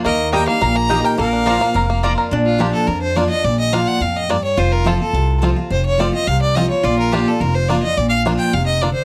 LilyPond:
<<
  \new Staff \with { instrumentName = "Fiddle" } { \time 4/4 \key bes \major \tempo 4 = 212 ees''4 g''8 f''4 bes''4 g''8 | f''2. r4 | r8 f'8 g'8 a'8 bes'8 c''8 d''8 ees''8 | d''8 ees''8 f''8 ges''8 f''8 ees''8 d''8 des''8 |
c''8 bes'8 a'8 a'4. r4 | c''8 des''8 d''8 ees''8 f''8 d''8 ees''8 des''8 | d''8 bes'8 g'8 a'8 bes'8 c''8 d''8 ees''8 | d''8 f''8 r8 g''8 f''8 ees''8 d''8 c''8 | }
  \new Staff \with { instrumentName = "Mandolin" } { \time 4/4 \key bes \major r4 <bes g' ees'' bes''>8 r4. <bes g' ees'' bes''>8 r8 | r4 <bes f' d'' bes''>8 r4. <bes f' d'' bes''>8 r8 | r1 | r1 |
r1 | r1 | r1 | r1 | }
  \new Staff \with { instrumentName = "Resonator guitar played with a steel bar" } { \time 4/4 \key bes \major bes'1 | bes'2.~ bes'8 r8 | d'1~ | d'1 |
f'1~ | f'2.~ f'8 r8 | f'1~ | f'2.~ f'8. r16 | }
  \new Staff \with { instrumentName = "Five-string banjo" } { \time 4/4 \key bes \major bes4 g8 bes8 bes'8 bes8 g'8 bes'8 | bes8 d'8 f8 bes8 bes'8 bes8 f'8 bes'8 | r4 <bes d' f'>8 r4. <bes d' f'>8 r8 | r4 <bes d' f'>8 r4. <bes d' f'>8 r8 |
r4 <c' f'>8 r4. <c' f'>8 r8 | r4 <c' f'>8 r4. <c' f'>8 r8 | r4 <bes d' f'>8 r4. <bes d' f'>8 r8 | r4 <bes d' f'>8 r4. <bes d' f'>8 r8 | }
  \new Staff \with { instrumentName = "Steel-string acoustic guitar" } { \time 4/4 \key bes \major << { r4 <ees bes ees' g'>8 <ees' g'>8 r4 <ees bes ees' g'>4 | r4 <f bes d' f'>8 <d' f'>8 r4 <f bes d' f'>4 | r4 <f bes d' f'>4 r4 <f bes d' f'>8 <d' f'>8 | r4 <f bes d' f'>4 r2 |
r4 <f a c' f'>8 <c' f'>8 r4 <f a c' f'>8 <c' f'>8 | r4 <f a c' f'>8 <c' f'>8 r4 <f a c' f'>8 <c' f'>8 | r4 <f bes d' f'>8 <d' f'>8 r4 <f bes d' f'>8 <d' f'>8 | r4 <f bes d' f'>4 r2 | } \\ { ees2 bes,2 | bes,2 f,2 | bes,2 f,2 | bes,2 a,4 g,4 |
f,2 c2 | f,2 c2 | bes,2 f,2 | bes,2 c4 d4 | } >> }
  \new Staff \with { instrumentName = "Upright bass" } { \clef bass \time 4/4 \key bes \major ees,2 bes,,2 | bes,,2 f,,2 | bes,,2 f,2 | bes,,2 f,2 |
f,,2 c,2 | f,,2 c,2 | bes,,2 f,,2 | bes,,2 f,,2 | }
>>